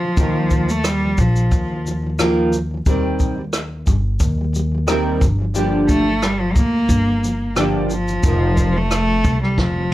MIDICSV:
0, 0, Header, 1, 5, 480
1, 0, Start_track
1, 0, Tempo, 671892
1, 121, Time_signature, 4, 2, 24, 8
1, 7099, End_track
2, 0, Start_track
2, 0, Title_t, "Cello"
2, 0, Program_c, 0, 42
2, 0, Note_on_c, 0, 53, 89
2, 502, Note_on_c, 0, 57, 80
2, 513, Note_off_c, 0, 53, 0
2, 608, Note_on_c, 0, 55, 87
2, 619, Note_off_c, 0, 57, 0
2, 853, Note_on_c, 0, 53, 72
2, 864, Note_off_c, 0, 55, 0
2, 1328, Note_off_c, 0, 53, 0
2, 4206, Note_on_c, 0, 57, 91
2, 4450, Note_on_c, 0, 55, 93
2, 4461, Note_off_c, 0, 57, 0
2, 4571, Note_on_c, 0, 53, 82
2, 4582, Note_off_c, 0, 55, 0
2, 4676, Note_on_c, 0, 58, 97
2, 4687, Note_off_c, 0, 53, 0
2, 5399, Note_off_c, 0, 58, 0
2, 5649, Note_on_c, 0, 53, 86
2, 6263, Note_on_c, 0, 57, 94
2, 6273, Note_off_c, 0, 53, 0
2, 6732, Note_off_c, 0, 57, 0
2, 6736, Note_on_c, 0, 55, 74
2, 6846, Note_on_c, 0, 53, 80
2, 6857, Note_off_c, 0, 55, 0
2, 7099, Note_off_c, 0, 53, 0
2, 7099, End_track
3, 0, Start_track
3, 0, Title_t, "Nylon-string guitar"
3, 0, Program_c, 1, 24
3, 13, Note_on_c, 1, 46, 34
3, 24, Note_on_c, 1, 50, 39
3, 35, Note_on_c, 1, 53, 47
3, 121, Note_off_c, 1, 53, 0
3, 122, Note_off_c, 1, 46, 0
3, 123, Note_off_c, 1, 50, 0
3, 126, Note_on_c, 1, 51, 57
3, 130, Note_on_c, 1, 53, 56
3, 135, Note_on_c, 1, 58, 62
3, 138, Note_on_c, 1, 65, 58
3, 141, Note_on_c, 1, 70, 70
3, 481, Note_off_c, 1, 51, 0
3, 490, Note_on_c, 1, 51, 42
3, 498, Note_off_c, 1, 53, 0
3, 501, Note_off_c, 1, 58, 0
3, 502, Note_off_c, 1, 65, 0
3, 504, Note_off_c, 1, 70, 0
3, 511, Note_on_c, 1, 53, 45
3, 679, Note_off_c, 1, 51, 0
3, 690, Note_off_c, 1, 53, 0
3, 732, Note_on_c, 1, 51, 40
3, 754, Note_on_c, 1, 53, 46
3, 836, Note_off_c, 1, 51, 0
3, 845, Note_on_c, 1, 51, 53
3, 852, Note_off_c, 1, 53, 0
3, 865, Note_on_c, 1, 53, 56
3, 1040, Note_off_c, 1, 51, 0
3, 1050, Note_off_c, 1, 53, 0
3, 1215, Note_on_c, 1, 51, 39
3, 1236, Note_on_c, 1, 53, 43
3, 1312, Note_off_c, 1, 51, 0
3, 1321, Note_on_c, 1, 51, 59
3, 1333, Note_off_c, 1, 53, 0
3, 1342, Note_on_c, 1, 53, 62
3, 1444, Note_off_c, 1, 51, 0
3, 1453, Note_on_c, 1, 51, 48
3, 1464, Note_off_c, 1, 53, 0
3, 1474, Note_on_c, 1, 53, 53
3, 1553, Note_off_c, 1, 51, 0
3, 1559, Note_off_c, 1, 53, 0
3, 1561, Note_on_c, 1, 51, 72
3, 1568, Note_on_c, 1, 53, 79
3, 1571, Note_on_c, 1, 58, 90
3, 1574, Note_on_c, 1, 65, 85
3, 1577, Note_on_c, 1, 70, 89
3, 1792, Note_off_c, 1, 51, 0
3, 1801, Note_on_c, 1, 51, 69
3, 1805, Note_off_c, 1, 53, 0
3, 1807, Note_off_c, 1, 58, 0
3, 1808, Note_off_c, 1, 65, 0
3, 1810, Note_off_c, 1, 70, 0
3, 1822, Note_on_c, 1, 53, 67
3, 1926, Note_off_c, 1, 51, 0
3, 1934, Note_on_c, 1, 51, 47
3, 1944, Note_off_c, 1, 53, 0
3, 1955, Note_on_c, 1, 53, 59
3, 2034, Note_off_c, 1, 51, 0
3, 2043, Note_off_c, 1, 53, 0
3, 2043, Note_on_c, 1, 51, 70
3, 2046, Note_on_c, 1, 55, 72
3, 2051, Note_on_c, 1, 60, 73
3, 2055, Note_on_c, 1, 67, 67
3, 2057, Note_on_c, 1, 70, 67
3, 2404, Note_off_c, 1, 51, 0
3, 2412, Note_on_c, 1, 51, 46
3, 2417, Note_off_c, 1, 55, 0
3, 2419, Note_off_c, 1, 60, 0
3, 2421, Note_off_c, 1, 67, 0
3, 2422, Note_off_c, 1, 70, 0
3, 2435, Note_on_c, 1, 55, 62
3, 2601, Note_off_c, 1, 51, 0
3, 2612, Note_off_c, 1, 55, 0
3, 2756, Note_on_c, 1, 51, 56
3, 2778, Note_on_c, 1, 55, 74
3, 2957, Note_off_c, 1, 51, 0
3, 2968, Note_off_c, 1, 55, 0
3, 3128, Note_on_c, 1, 51, 46
3, 3152, Note_on_c, 1, 55, 53
3, 3228, Note_off_c, 1, 51, 0
3, 3237, Note_on_c, 1, 51, 72
3, 3252, Note_off_c, 1, 55, 0
3, 3260, Note_on_c, 1, 55, 73
3, 3360, Note_off_c, 1, 51, 0
3, 3369, Note_on_c, 1, 51, 43
3, 3384, Note_off_c, 1, 55, 0
3, 3391, Note_on_c, 1, 55, 47
3, 3469, Note_off_c, 1, 51, 0
3, 3472, Note_off_c, 1, 55, 0
3, 3477, Note_on_c, 1, 51, 73
3, 3481, Note_on_c, 1, 55, 88
3, 3487, Note_on_c, 1, 60, 84
3, 3489, Note_on_c, 1, 67, 83
3, 3491, Note_on_c, 1, 70, 99
3, 3716, Note_on_c, 1, 43, 71
3, 3720, Note_off_c, 1, 51, 0
3, 3722, Note_off_c, 1, 55, 0
3, 3725, Note_off_c, 1, 60, 0
3, 3726, Note_off_c, 1, 67, 0
3, 3727, Note_off_c, 1, 70, 0
3, 3728, Note_on_c, 1, 50, 71
3, 3734, Note_on_c, 1, 53, 72
3, 3838, Note_off_c, 1, 43, 0
3, 3847, Note_on_c, 1, 43, 47
3, 3849, Note_off_c, 1, 50, 0
3, 3858, Note_off_c, 1, 53, 0
3, 3858, Note_on_c, 1, 50, 55
3, 3867, Note_on_c, 1, 53, 52
3, 3948, Note_off_c, 1, 43, 0
3, 3951, Note_off_c, 1, 50, 0
3, 3954, Note_off_c, 1, 53, 0
3, 3957, Note_on_c, 1, 43, 72
3, 3959, Note_on_c, 1, 50, 75
3, 3962, Note_on_c, 1, 53, 82
3, 3965, Note_on_c, 1, 58, 76
3, 3968, Note_on_c, 1, 62, 79
3, 3971, Note_on_c, 1, 67, 90
3, 4320, Note_off_c, 1, 43, 0
3, 4329, Note_on_c, 1, 43, 43
3, 4331, Note_off_c, 1, 50, 0
3, 4335, Note_off_c, 1, 53, 0
3, 4336, Note_off_c, 1, 58, 0
3, 4338, Note_off_c, 1, 62, 0
3, 4339, Note_off_c, 1, 67, 0
3, 4339, Note_on_c, 1, 50, 49
3, 4350, Note_on_c, 1, 53, 50
3, 4519, Note_off_c, 1, 43, 0
3, 4525, Note_off_c, 1, 50, 0
3, 4530, Note_off_c, 1, 53, 0
3, 4675, Note_on_c, 1, 43, 58
3, 4685, Note_on_c, 1, 50, 53
3, 4694, Note_on_c, 1, 53, 52
3, 4876, Note_off_c, 1, 43, 0
3, 4881, Note_off_c, 1, 50, 0
3, 4886, Note_off_c, 1, 53, 0
3, 5046, Note_on_c, 1, 43, 38
3, 5058, Note_on_c, 1, 50, 49
3, 5066, Note_on_c, 1, 53, 42
3, 5150, Note_off_c, 1, 43, 0
3, 5159, Note_on_c, 1, 43, 48
3, 5161, Note_off_c, 1, 50, 0
3, 5169, Note_off_c, 1, 53, 0
3, 5170, Note_on_c, 1, 50, 56
3, 5180, Note_on_c, 1, 53, 62
3, 5358, Note_off_c, 1, 43, 0
3, 5363, Note_off_c, 1, 50, 0
3, 5368, Note_off_c, 1, 53, 0
3, 5398, Note_on_c, 1, 43, 75
3, 5403, Note_on_c, 1, 50, 74
3, 5407, Note_on_c, 1, 53, 79
3, 5409, Note_on_c, 1, 58, 89
3, 5412, Note_on_c, 1, 62, 89
3, 5415, Note_on_c, 1, 67, 87
3, 5630, Note_off_c, 1, 43, 0
3, 5638, Note_on_c, 1, 43, 62
3, 5643, Note_off_c, 1, 50, 0
3, 5645, Note_off_c, 1, 53, 0
3, 5646, Note_off_c, 1, 58, 0
3, 5647, Note_off_c, 1, 62, 0
3, 5649, Note_off_c, 1, 67, 0
3, 5651, Note_on_c, 1, 50, 58
3, 5659, Note_on_c, 1, 53, 63
3, 5761, Note_off_c, 1, 43, 0
3, 5770, Note_on_c, 1, 43, 47
3, 5773, Note_off_c, 1, 50, 0
3, 5781, Note_off_c, 1, 53, 0
3, 5782, Note_on_c, 1, 50, 45
3, 5790, Note_on_c, 1, 53, 52
3, 5871, Note_off_c, 1, 53, 0
3, 5880, Note_off_c, 1, 43, 0
3, 5880, Note_on_c, 1, 53, 61
3, 5886, Note_off_c, 1, 50, 0
3, 5886, Note_on_c, 1, 60, 66
3, 5891, Note_on_c, 1, 63, 74
3, 5895, Note_on_c, 1, 70, 71
3, 6243, Note_off_c, 1, 53, 0
3, 6252, Note_on_c, 1, 53, 52
3, 6256, Note_off_c, 1, 60, 0
3, 6258, Note_off_c, 1, 63, 0
3, 6260, Note_off_c, 1, 70, 0
3, 6272, Note_on_c, 1, 60, 47
3, 6440, Note_off_c, 1, 53, 0
3, 6450, Note_off_c, 1, 60, 0
3, 6491, Note_on_c, 1, 53, 35
3, 6512, Note_on_c, 1, 60, 47
3, 6588, Note_off_c, 1, 53, 0
3, 6597, Note_on_c, 1, 53, 53
3, 6611, Note_off_c, 1, 60, 0
3, 6618, Note_on_c, 1, 60, 57
3, 6795, Note_off_c, 1, 53, 0
3, 6806, Note_off_c, 1, 60, 0
3, 6966, Note_on_c, 1, 53, 39
3, 6985, Note_on_c, 1, 60, 39
3, 7063, Note_off_c, 1, 53, 0
3, 7072, Note_on_c, 1, 53, 53
3, 7087, Note_off_c, 1, 60, 0
3, 7099, Note_off_c, 1, 53, 0
3, 7099, End_track
4, 0, Start_track
4, 0, Title_t, "Upright bass"
4, 0, Program_c, 2, 32
4, 125, Note_on_c, 2, 39, 84
4, 815, Note_off_c, 2, 39, 0
4, 844, Note_on_c, 2, 34, 83
4, 1064, Note_off_c, 2, 34, 0
4, 1082, Note_on_c, 2, 39, 98
4, 2014, Note_off_c, 2, 39, 0
4, 2044, Note_on_c, 2, 39, 83
4, 2735, Note_off_c, 2, 39, 0
4, 2766, Note_on_c, 2, 31, 84
4, 2986, Note_off_c, 2, 31, 0
4, 3001, Note_on_c, 2, 39, 90
4, 3722, Note_on_c, 2, 31, 88
4, 3733, Note_off_c, 2, 39, 0
4, 4654, Note_off_c, 2, 31, 0
4, 4685, Note_on_c, 2, 38, 81
4, 4905, Note_off_c, 2, 38, 0
4, 4923, Note_on_c, 2, 31, 92
4, 5854, Note_off_c, 2, 31, 0
4, 5883, Note_on_c, 2, 29, 84
4, 6573, Note_off_c, 2, 29, 0
4, 6604, Note_on_c, 2, 36, 88
4, 6840, Note_on_c, 2, 29, 78
4, 6851, Note_off_c, 2, 36, 0
4, 7099, Note_off_c, 2, 29, 0
4, 7099, End_track
5, 0, Start_track
5, 0, Title_t, "Drums"
5, 123, Note_on_c, 9, 82, 65
5, 124, Note_on_c, 9, 36, 94
5, 195, Note_off_c, 9, 82, 0
5, 196, Note_off_c, 9, 36, 0
5, 361, Note_on_c, 9, 82, 48
5, 365, Note_on_c, 9, 36, 67
5, 432, Note_off_c, 9, 82, 0
5, 436, Note_off_c, 9, 36, 0
5, 494, Note_on_c, 9, 82, 43
5, 566, Note_off_c, 9, 82, 0
5, 603, Note_on_c, 9, 37, 88
5, 605, Note_on_c, 9, 82, 77
5, 674, Note_off_c, 9, 37, 0
5, 677, Note_off_c, 9, 82, 0
5, 842, Note_on_c, 9, 82, 43
5, 845, Note_on_c, 9, 36, 80
5, 913, Note_off_c, 9, 82, 0
5, 917, Note_off_c, 9, 36, 0
5, 972, Note_on_c, 9, 82, 42
5, 1043, Note_off_c, 9, 82, 0
5, 1083, Note_on_c, 9, 36, 70
5, 1083, Note_on_c, 9, 82, 64
5, 1154, Note_off_c, 9, 82, 0
5, 1155, Note_off_c, 9, 36, 0
5, 1332, Note_on_c, 9, 82, 42
5, 1404, Note_off_c, 9, 82, 0
5, 1565, Note_on_c, 9, 37, 96
5, 1565, Note_on_c, 9, 82, 66
5, 1636, Note_off_c, 9, 37, 0
5, 1636, Note_off_c, 9, 82, 0
5, 1805, Note_on_c, 9, 82, 49
5, 1876, Note_off_c, 9, 82, 0
5, 2042, Note_on_c, 9, 82, 63
5, 2044, Note_on_c, 9, 36, 101
5, 2113, Note_off_c, 9, 82, 0
5, 2115, Note_off_c, 9, 36, 0
5, 2281, Note_on_c, 9, 82, 45
5, 2285, Note_on_c, 9, 36, 65
5, 2352, Note_off_c, 9, 82, 0
5, 2356, Note_off_c, 9, 36, 0
5, 2521, Note_on_c, 9, 37, 85
5, 2523, Note_on_c, 9, 82, 65
5, 2592, Note_off_c, 9, 37, 0
5, 2595, Note_off_c, 9, 82, 0
5, 2762, Note_on_c, 9, 82, 46
5, 2765, Note_on_c, 9, 36, 77
5, 2834, Note_off_c, 9, 82, 0
5, 2837, Note_off_c, 9, 36, 0
5, 2999, Note_on_c, 9, 82, 57
5, 3002, Note_on_c, 9, 36, 82
5, 3070, Note_off_c, 9, 82, 0
5, 3073, Note_off_c, 9, 36, 0
5, 3248, Note_on_c, 9, 82, 47
5, 3320, Note_off_c, 9, 82, 0
5, 3485, Note_on_c, 9, 37, 104
5, 3485, Note_on_c, 9, 82, 59
5, 3556, Note_off_c, 9, 37, 0
5, 3556, Note_off_c, 9, 82, 0
5, 3724, Note_on_c, 9, 36, 85
5, 3726, Note_on_c, 9, 82, 46
5, 3795, Note_off_c, 9, 36, 0
5, 3797, Note_off_c, 9, 82, 0
5, 3965, Note_on_c, 9, 82, 64
5, 4036, Note_off_c, 9, 82, 0
5, 4206, Note_on_c, 9, 36, 70
5, 4206, Note_on_c, 9, 82, 43
5, 4277, Note_off_c, 9, 82, 0
5, 4278, Note_off_c, 9, 36, 0
5, 4446, Note_on_c, 9, 37, 90
5, 4449, Note_on_c, 9, 82, 70
5, 4518, Note_off_c, 9, 37, 0
5, 4520, Note_off_c, 9, 82, 0
5, 4685, Note_on_c, 9, 82, 42
5, 4686, Note_on_c, 9, 36, 76
5, 4757, Note_off_c, 9, 36, 0
5, 4757, Note_off_c, 9, 82, 0
5, 4923, Note_on_c, 9, 36, 72
5, 4924, Note_on_c, 9, 82, 61
5, 4994, Note_off_c, 9, 36, 0
5, 4995, Note_off_c, 9, 82, 0
5, 5172, Note_on_c, 9, 82, 44
5, 5244, Note_off_c, 9, 82, 0
5, 5404, Note_on_c, 9, 37, 103
5, 5404, Note_on_c, 9, 82, 62
5, 5475, Note_off_c, 9, 37, 0
5, 5475, Note_off_c, 9, 82, 0
5, 5644, Note_on_c, 9, 82, 43
5, 5716, Note_off_c, 9, 82, 0
5, 5772, Note_on_c, 9, 82, 46
5, 5844, Note_off_c, 9, 82, 0
5, 5881, Note_on_c, 9, 82, 64
5, 5883, Note_on_c, 9, 36, 102
5, 5953, Note_off_c, 9, 82, 0
5, 5955, Note_off_c, 9, 36, 0
5, 6123, Note_on_c, 9, 82, 46
5, 6124, Note_on_c, 9, 36, 70
5, 6195, Note_off_c, 9, 82, 0
5, 6196, Note_off_c, 9, 36, 0
5, 6364, Note_on_c, 9, 37, 90
5, 6366, Note_on_c, 9, 82, 75
5, 6436, Note_off_c, 9, 37, 0
5, 6438, Note_off_c, 9, 82, 0
5, 6602, Note_on_c, 9, 82, 42
5, 6604, Note_on_c, 9, 36, 89
5, 6674, Note_off_c, 9, 82, 0
5, 6675, Note_off_c, 9, 36, 0
5, 6740, Note_on_c, 9, 37, 31
5, 6812, Note_off_c, 9, 37, 0
5, 6840, Note_on_c, 9, 36, 72
5, 6843, Note_on_c, 9, 38, 43
5, 6912, Note_off_c, 9, 36, 0
5, 6914, Note_off_c, 9, 38, 0
5, 7099, End_track
0, 0, End_of_file